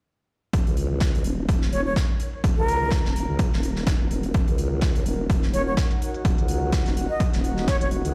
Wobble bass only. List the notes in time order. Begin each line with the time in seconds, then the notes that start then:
0.53 D#1
0.67 C#2
1.14 C#2
1.25 D#1
1.49 D#1
1.72 D#1
2.44 D#1
2.57 C#2
3.05 D#1
3.29 C#2
3.52 D#1
3.87 D#1
4.11 D#1
4.34 D#1
4.48 C#2
4.95 C#2
5.06 D#1
5.30 D#1
5.54 D#1
6.25 D#1
6.38 C#2
6.86 D#1
7.33 D#1
7.81 D#1
8.05 C#2